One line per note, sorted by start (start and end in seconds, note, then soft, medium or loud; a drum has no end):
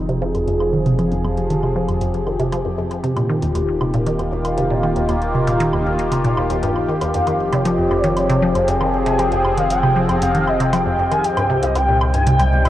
0.00 3.01 F1 medium
0.00 3.04 F3 medium
0.00 4.68 C4 medium
0.00 11.98 G4 medium
0.00 3.04 G#4 medium
0.09 0.15 C3 medium
0.09 closed hi-hat soft
0.22 0.26 F3 loud
0.35 0.38 F2 medium
0.35 closed hi-hat soft
0.35 low woodblock soft
0.48 0.51 F2 medium
0.48 closed hi-hat medium
0.60 low woodblock medium
0.73 0.77 D#3 medium
0.86 0.92 C3 loud
0.86 closed hi-hat soft
0.99 1.03 F3 medium
0.99 closed hi-hat medium
0.99 low woodblock soft
1.12 1.15 F2 medium
1.12 closed hi-hat soft
1.24 1.28 F2 medium
1.24 low woodblock medium
1.37 closed hi-hat medium
1.50 1.54 D#3 medium
1.50 closed hi-hat medium
1.63 1.69 C3 medium
1.63 low woodblock soft
1.76 1.79 F3 loud
1.89 1.92 F2 medium
1.89 closed hi-hat soft
1.89 low woodblock medium
2.01 2.05 F2 medium
2.01 closed hi-hat medium
2.14 closed hi-hat soft
2.27 2.31 D#3 medium
2.27 low woodblock soft
2.40 2.46 C3 loud
2.40 closed hi-hat soft
2.53 2.56 F3 loud
2.53 closed hi-hat medium
2.53 low woodblock medium
2.65 2.69 F2 medium
2.78 2.82 F2 medium
2.91 closed hi-hat soft
2.91 low woodblock soft
3.04 7.11 D#1 medium
3.04 3.08 C3 medium
3.04 7.14 D#3 medium
3.04 closed hi-hat medium
3.17 3.23 A#2 loud
3.17 7.83 A#3 medium
3.17 closed hi-hat soft
3.17 low woodblock medium
3.27 3.33 D#3 loud
3.27 8.75 F4 medium
3.42 3.46 D#2 medium
3.42 closed hi-hat medium
3.55 3.59 D#2 medium
3.55 closed hi-hat medium
3.55 low woodblock soft
3.81 3.85 C3 medium
3.81 low woodblock medium
3.94 4.00 A#2 loud
3.94 closed hi-hat soft
4.06 4.10 D#3 medium
4.06 closed hi-hat medium
4.19 4.23 D#2 medium
4.19 closed hi-hat soft
4.19 low woodblock soft
4.32 4.36 D#2 medium
4.45 closed hi-hat soft
4.45 low woodblock medium
4.58 4.62 C3 medium
4.58 closed hi-hat medium
4.71 4.77 A#2 loud
4.83 4.87 D#3 medium
4.83 low woodblock soft
4.96 5.00 D#2 medium
4.96 closed hi-hat soft
5.09 5.13 D#2 medium
5.09 closed hi-hat medium
5.09 low woodblock medium
5.22 closed hi-hat soft
5.35 5.38 C3 medium
5.47 5.54 A#2 medium
5.47 closed hi-hat medium
5.47 low woodblock soft
5.60 5.64 D#3 loud
5.60 closed hi-hat medium
5.73 5.77 D#2 medium
5.73 low woodblock medium
5.86 5.90 D#2 medium
5.99 closed hi-hat medium
6.12 6.15 C3 medium
6.12 closed hi-hat medium
6.12 low woodblock soft
6.24 6.31 A#2 medium
6.24 closed hi-hat soft
6.37 6.43 D#2 medium
6.37 low woodblock medium
6.50 6.59 D#2 loud
6.50 closed hi-hat soft
6.63 6.69 G2 loud
6.63 closed hi-hat medium
6.76 low woodblock soft
6.89 6.92 D#3 medium
7.01 7.05 D#2 medium
7.01 closed hi-hat soft
7.01 low woodblock medium
7.14 11.22 F1 medium
7.14 7.18 F2 medium
7.14 11.24 F3 medium
7.14 7.54 F5 loud
7.14 closed hi-hat medium
7.26 7.31 D#3 medium
7.26 12.69 C4 medium
7.26 closed hi-hat soft
7.26 low woodblock soft
7.52 7.59 C3 loud
7.52 7.65 C#5 medium
7.52 closed hi-hat soft
7.52 low woodblock medium
7.65 7.69 F3 loud
7.65 8.03 D#5 loud
7.65 closed hi-hat medium
7.78 7.82 F2 medium
7.91 7.95 F2 medium
7.91 low woodblock soft
7.99 11.24 G#4 medium
8.03 8.08 D#3 medium
8.03 8.17 C#5 loud
8.03 closed hi-hat soft
8.17 8.44 C#5 loud
8.17 closed hi-hat medium
8.17 low woodblock medium
8.29 8.36 C3 medium
8.29 closed hi-hat soft
8.42 8.46 F3 loud
8.42 8.69 C5 medium
8.55 8.59 F2 medium
8.55 closed hi-hat soft
8.55 low woodblock soft
8.68 8.72 F2 medium
8.68 9.06 G5 loud
8.68 closed hi-hat medium
8.81 8.85 D#3 medium
8.81 low woodblock medium
9.06 9.13 C3 loud
9.06 9.21 G#5 loud
9.06 closed hi-hat soft
9.19 9.23 F3 medium
9.19 9.59 G5 loud
9.19 closed hi-hat medium
9.19 low woodblock soft
9.32 9.36 F2 medium
9.32 closed hi-hat soft
9.45 9.49 F2 medium
9.45 low woodblock medium
9.58 9.61 D#3 medium
9.58 9.70 F5 loud
9.58 closed hi-hat soft
9.70 10.18 G5 loud
9.70 closed hi-hat medium
9.83 9.90 C3 loud
9.83 low woodblock soft
9.96 10.00 F3 loud
10.09 10.13 F2 medium
10.09 closed hi-hat soft
10.09 low woodblock medium
10.22 10.26 F2 medium
10.22 10.49 F5 loud
10.22 closed hi-hat medium
10.35 10.38 D#3 medium
10.35 closed hi-hat soft
10.47 10.75 D#5 medium
10.47 low woodblock soft
10.60 10.66 C3 loud
10.60 closed hi-hat soft
10.73 10.77 F3 loud
10.73 11.13 G5 loud
10.73 closed hi-hat medium
10.73 low woodblock medium
10.86 10.90 F2 medium
10.99 11.02 F2 medium
11.11 11.15 D#3 medium
11.11 11.26 G#5 loud
11.11 closed hi-hat soft
11.11 low woodblock soft
11.24 12.69 C2 medium
11.24 12.69 C3 medium
11.24 11.64 G5 loud
11.24 closed hi-hat medium
11.37 11.43 G2 medium
11.37 closed hi-hat soft
11.37 low woodblock medium
11.50 11.54 C3 loud
11.57 12.69 G3 medium
11.63 11.67 C2 medium
11.63 11.77 D#5 medium
11.63 closed hi-hat soft
11.75 11.79 C2 medium
11.75 12.16 G5 loud
11.75 closed hi-hat medium
11.75 low woodblock soft
11.88 11.92 A#2 medium
12.01 12.69 D#4 medium
12.01 low woodblock medium
12.14 12.20 G2 medium
12.14 12.26 G#5 medium
12.14 closed hi-hat soft
12.27 12.31 C3 loud
12.27 12.67 G5 loud
12.27 closed hi-hat medium
12.40 12.44 C2 medium
12.40 closed hi-hat soft
12.40 low woodblock soft
12.53 12.56 C2 medium
12.65 12.69 A#2 medium
12.65 12.69 D#5 medium
12.65 closed hi-hat soft
12.65 low woodblock medium